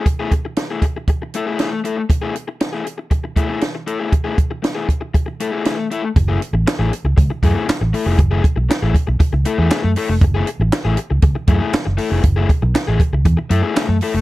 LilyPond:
<<
  \new Staff \with { instrumentName = "Overdriven electric guitar" } { \time 4/4 \key fis \minor \tempo 4 = 118 r16 <a e' gis'>8 r8 <a e' gis'>8 r8. <a e' a'>16 <a e' gis'>16 <a e' gis'>8 <a e' a'>16 r16 | r16 <a e' gis'>8 r8 <a e' gis'>8 r8. <a e' gis'>16 <a e' gis'>16 r8 <a e' a'>16 <a e' gis'>16 | r16 <a e' gis'>8 r8 <a e' gis'>8 r8. <a e' a'>16 <a e' gis'>16 <a e' gis'>8 <a e' a'>16 r16 | r16 <a e' gis'>8 r8 <a e' gis'>8 r8. <a e' gis'>16 <a e' gis'>16 r8 <a e' a'>16 <a e' gis'>16 |
r16 <a e' gis'>8 r8 <a e' gis'>8 r8. <a e' a'>16 <a e' gis'>16 <a e' gis'>8 <a e' a'>16 r16 | r16 <a e' gis'>8 r8 <a e' gis'>8 r8. <a e' gis'>16 <a e' gis'>16 r8 <a e' a'>16 <a e' gis'>16 | r16 <a e' gis'>8 r8 <a e' gis'>8 r8. <a e' a'>16 <a e' gis'>16 <a e' gis'>8 <a e' a'>16 r16 | }
  \new Staff \with { instrumentName = "Fingered electric bass" } { \clef bass \time 4/4 \key fis \minor r1 | r1 | r1 | fis,,8 r16 a,,16 r16 a,,16 r16 cis,16 cis,16 r16 fis,16 r8 a,,16 r16 eis,,16 |
fis,,8 r16 b,,16 r16 a,,16 r16 b,,16 r16 cis,16 r16 e,16 r16 fis,16 r16 eis,,16 | fis,,8 r16 a,,16 r16 a,,16 r16 cis,16 cis,16 r16 fis,16 r8 fis,,16 r16 eis,,16 | fis,,8 r16 b,,16 r16 a,,16 r16 cis,16 e,16 r16 fis,16 r8 fis,16 r16 eis,,16 | }
  \new DrumStaff \with { instrumentName = "Drums" } \drummode { \time 4/4 <hh bd>8 <hh bd>8 <hh sn>8 <hh bd>8 <hh bd>8 hh8 <hh sn>8 hh8 | <hh bd>8 hh8 <hh sn>8 hh8 <hh bd>8 <hh bd>8 <hh sn>8 hh8 | <hh bd>8 <hh bd>8 <hh sn>8 <hh bd>8 <hh bd>8 hh8 <hh sn>8 hh8 | <hh bd>8 hh8 <hc hh sn>8 hh8 <hh bd>8 <hh bd>8 <hc hh sn>8 hho8 |
<hh bd>8 <hh bd>8 <hc hh sn>8 <hh bd>8 <hh bd>8 hh8 <hc hh sn>8 hho8 | <hh bd>8 hh8 <hc hh sn>8 hh8 <hh bd>8 <hh bd>8 <hc hh sn>8 hho8 | <hh bd>8 <hh bd>8 <hc hh sn>8 <hh bd>8 <hh bd>8 hh8 <hc hh sn>8 hho8 | }
>>